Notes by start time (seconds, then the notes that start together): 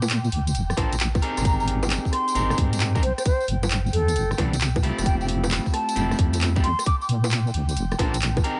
Already playing: A#2 G5
0.02 tambourine, high bongo
0.10 clap, closed hi-hat, tambourine
0.24 tambourine
0.32 D2, open hi-hat
0.47 closed hi-hat, tambourine
0.55 F1, closed hi-hat, tambourine
0.70 cross-stick, tambourine
0.77 A#1 D4 F4 A4 A#4 C5, kick, open hi-hat, high bongo
0.92 closed hi-hat, tambourine
1.00 clap, closed hi-hat, tambourine
1.15 kick, tambourine, high bongo
1.22 C4 D#4 G4 G#4 A#4, open hi-hat
1.37 G#1, cross-stick, closed hi-hat, tambourine
1.45 A#5, kick, closed hi-hat, tambourine
1.60 A#5, tambourine
1.68 open hi-hat
1.83 tambourine, high bongo
1.90 clap, closed hi-hat, tambourine
2.05 kick, tambourine
2.13 C6, cross-stick, open hi-hat
2.28 closed hi-hat, tambourine
2.35 G#1 C4 D#4 G4 G#4 A#4, closed hi-hat, tambourine
2.50 cross-stick, tambourine
2.58 G#2, kick, open hi-hat
2.73 closed hi-hat, tambourine
2.80 clap, closed hi-hat, tambourine
2.95 C4 D#4 G4 G#4 A#4, kick, tambourine
3.03 C2 C5, open hi-hat
3.18 C5, cross-stick, closed hi-hat, tambourine
3.26 C5, kick, closed hi-hat, tambourine
3.40 tambourine
3.48 G1, open hi-hat
3.63 tambourine, high bongo
3.70 clap, closed hi-hat, tambourine
3.86 tambourine
3.93 E2 A4, open hi-hat
4.08 closed hi-hat, tambourine
4.16 G1, closed hi-hat, tambourine
4.31 cross-stick, tambourine
4.38 C2 E3 G3 B3 C4 D4, kick, open hi-hat, high bongo
4.53 closed hi-hat, tambourine
4.61 clap, closed hi-hat, tambourine
4.76 kick, tambourine, high bongo
4.83 A3 C4 E4 F4 G4, open hi-hat
4.98 F1, cross-stick, closed hi-hat, tambourine
5.06 G5, kick, closed hi-hat, tambourine
5.21 G5, tambourine
5.28 open hi-hat
5.44 tambourine, high bongo
5.51 clap, closed hi-hat, tambourine
5.66 kick, tambourine
5.73 A5, cross-stick, open hi-hat
5.89 closed hi-hat, tambourine
5.96 F1 A3 C4 E4 F4 G4, closed hi-hat, tambourine
6.11 cross-stick, tambourine
6.19 F2, kick, open hi-hat
6.33 closed hi-hat, tambourine
6.41 clap, closed hi-hat, tambourine
6.56 A3 C4 E4 F4 G4, kick, tambourine
6.64 F2 C6, open hi-hat
6.79 cross-stick, closed hi-hat, tambourine
6.86 D6, kick, closed hi-hat, tambourine
7.01 D6, tambourine
7.09 A#2, open hi-hat
7.24 tambourine, high bongo
7.31 clap, closed hi-hat, tambourine
7.47 tambourine
7.54 D2, open hi-hat
7.69 closed hi-hat, tambourine
7.77 F1, closed hi-hat, tambourine
7.92 cross-stick, tambourine
7.99 A#1 D4 F4 A4 A#4 C5, kick, open hi-hat, high bongo
8.14 closed hi-hat, tambourine
8.22 clap, closed hi-hat, tambourine
8.37 kick, tambourine, high bongo
8.44 C4 D#4 G4 G#4 A#4, open hi-hat